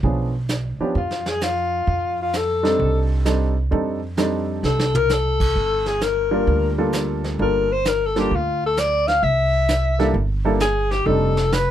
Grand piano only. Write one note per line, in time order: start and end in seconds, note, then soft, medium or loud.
0.04 0.31 F3 medium
0.04 0.31 B3 soft
0.04 0.31 C#4 soft
0.04 0.31 D4 soft
0.04 0.31 G#4 medium
0.80 0.94 F3 medium
0.80 0.94 B3 medium
0.80 0.94 C#4 medium
0.80 0.94 D4 medium
0.80 0.94 G4 medium
2.63 3.22 G3 medium
2.63 3.22 C4 medium
2.63 3.22 D4 medium
2.63 3.22 D#4 medium
2.63 3.22 A4 medium
3.25 3.53 G3 medium
3.25 3.53 C4 medium
3.25 3.53 D4 medium
3.25 3.53 D#4 medium
3.25 3.53 A4 medium
3.71 3.99 G3 medium
3.71 3.99 C4 medium
3.71 3.99 D4 medium
3.71 3.99 D#4 medium
3.71 3.99 A4 medium
4.17 4.88 G3 medium
4.17 4.88 C4 medium
4.17 4.88 D4 medium
4.17 4.88 D#4 medium
4.17 4.88 A4 medium
6.31 6.74 G3 medium
6.31 6.74 A#3 medium
6.31 6.74 D4 medium
6.31 6.75 F4 medium
6.31 6.74 A#4 medium
6.78 7.36 G3 medium
6.78 7.36 A#3 medium
6.78 7.36 D4 medium
6.78 7.37 F4 medium
6.78 7.36 A4 medium
7.40 7.67 G3 medium
7.40 7.67 A#3 medium
7.40 7.67 D4 medium
7.40 7.67 F4 medium
7.40 7.67 A4 medium
8.16 8.30 G3 medium
8.16 8.30 A#3 medium
8.16 8.30 D4 medium
8.16 8.30 F4 medium
8.16 8.30 A4 medium
9.99 10.13 G3 medium
9.99 10.13 A#3 medium
9.99 10.13 D4 medium
9.99 10.13 E4 medium
9.99 10.13 A4 medium
10.45 10.59 G3 medium
10.45 10.59 A#3 medium
10.45 10.59 D4 medium
10.45 10.59 E4 medium
10.45 10.59 A4 medium
11.06 11.34 G3 medium
11.06 11.34 C4 medium
11.06 11.34 D4 medium
11.06 11.34 D#4 medium
11.06 11.34 A4 medium